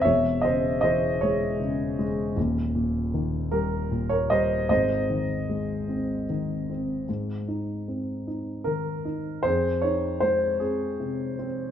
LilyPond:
<<
  \new Staff \with { instrumentName = "Grand piano" } { \time 6/8 \key aes \major \tempo 4. = 51 << { fes''8 ees''8 ees''8 des''4 r8 | r4. bes'8. des''16 ees''8 | ees''2 r4 | r2 bes'4 |
c''8 des''8 c''8 aes'4 r8 | } \\ { des''8 c''8 c''8 aes'4 r8 | r4. g'8. bes'16 c''8 | c''2 r4 | r2. |
aes'4. r4. | } >> }
  \new Staff \with { instrumentName = "Grand piano" } { \clef bass \time 6/8 \key aes \major <fes,, fes,>8 des8 fes8 aes8 des8 aes8 | <ees,, ees,>8 bes,8 ees8 g8 bes,8 g8 | <aes,, aes,>8 ees8 aes8 c'8 ees8 c'8 | aes,8 ees'8 c'8 ees'8 ees8 ees'8 |
f,8 ees'8 aes8 c'8 c8 c'8 | }
>>